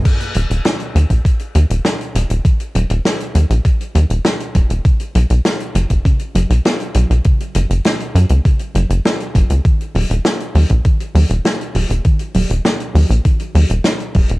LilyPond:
<<
  \new Staff \with { instrumentName = "Synth arpeggio sound" } { \clef bass \time 4/4 \key ees \minor \tempo 4 = 100 ees8 ges8 bes16 r16 ges8 ees8 ges8 bes16 r16 ges8 | ees16 r16 ges8 bes8 ges16 r16 ees8 ges8 bes16 r16 ges8 | cis8 fis8 b16 r16 fis8 cis16 r16 fis8 b8 fis16 r16 | des8 ges8 bes16 r16 ges8 des8 ges8 bes16 r16 ges8 |
ees8 ges8 bes16 r16 ges8 ees8 ges8 bes16 r16 ges8 | ees16 r16 ges8 bes8 ges16 r16 ees8 ges8 bes16 r16 ges8 | }
  \new Staff \with { instrumentName = "Analog synth bass" } { \clef bass \time 4/4 \key ees \minor r8 ees,,16 ees,,16 r8 ees,16 bes,,16 r8 ees,16 ees,,16 r8 ees,,16 ees,,16 | r8 ees,,16 ees,,16 r8 ees,16 bes,,16 r8 ees,16 ees,,16 r8 ees,,16 ees,,16 | r8 b,,16 b,,16 r8 fis,,16 fis,,16 r8 fis,,16 b,,16 r8 b,,16 b,,16 | r8 ges,,16 ges,,16 r8 ges,16 des,16 r8 ges,,16 ges,,16 r8 ges,,16 des,16 |
r8 ees,,16 ees,,16 r8 ees,16 bes,,16 r8 ees,16 ees,,16 r8 ees,,16 ees,,16 | r8 ees,,16 ees,,16 r8 ees,16 bes,,16 r8 ees,16 ees,,16 r8 ees,,16 ees,,16 | }
  \new DrumStaff \with { instrumentName = "Drums" } \drummode { \time 4/4 <cymc hh bd>16 hh16 hh16 hh16 <hh sn>16 hh16 hh16 <hh bd>16 <hh bd>16 hh16 hh16 hh16 <hh sn>16 hh16 hh16 hh16 | <hh bd>16 hh16 hh16 hh16 <hh sn>16 hh16 hh16 hh16 <hh bd>16 hh16 hh16 hh16 <hh sn>16 hh16 <hh bd>16 hh16 | <hh bd>16 hh16 hh16 hh16 <hh sn>16 hh16 hh16 <hh bd>16 <hh bd>16 hh16 hh16 hh16 <hh sn>16 hh16 hh16 hh16 | <hh bd>16 hh16 hh16 hh16 <hh sn>16 hh16 hh16 hh16 <hh bd>16 hh16 hh16 hh16 <hh sn>16 hh16 <hh bd>16 hh16 |
<hh bd>16 hh16 hho16 hh16 <hh sn>16 hh16 hho16 <hh bd>16 <hh bd>16 hh16 hho16 hh16 <hh sn>16 hh16 hho16 hh16 | <hh bd>16 hh16 hho16 hh16 <hh sn>16 hh16 hho16 hh16 <hh bd>16 hh16 hho16 hh16 <hh sn>16 hh16 <hho bd>16 hh16 | }
>>